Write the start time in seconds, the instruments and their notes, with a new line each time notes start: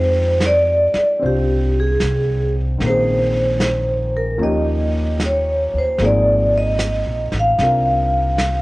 Already playing: upright bass F2, grand piano F3 G#3 C4 D#4 G5, vibraphone C5
0.40 snare, hi-hat pedal
0.46 vibraphone D5
0.94 muted upright bass stroke, snare
1.19 upright bass C2, grand piano C4 D4 F4 C5, brush sweep
1.26 vibraphone G4
1.80 vibraphone G#4
2.00 upright bass C2, snare, hi-hat pedal
2.78 upright bass A#1, grand piano D#3 A#3, brush sweep, snare
2.83 grand piano C4 C#4, vibraphone C5
2.89 grand piano G#4
3.60 snare, hi-hat pedal
4.17 vibraphone A#4
4.38 upright bass D#2, grand piano F3 A#3 C#4 D#4, brush sweep
4.42 grand piano G4, vibraphone D#5
5.19 snare, hi-hat pedal
5.25 vibraphone C#5
5.74 upright bass D#2
5.78 vibraphone C5
5.98 upright bass G#1, grand piano F3 A#3 C4 D#4 G#4, brush sweep, snare
6.05 vibraphone D5
6.58 vibraphone D#5
6.79 snare, hi-hat pedal
7.06 upright bass A#1
7.32 upright bass A1, snare
7.39 vibraphone F5
7.59 upright bass C2, grand piano C4 D4 A#4, brush sweep, snare
7.63 grand piano F4
8.38 snare, hi-hat pedal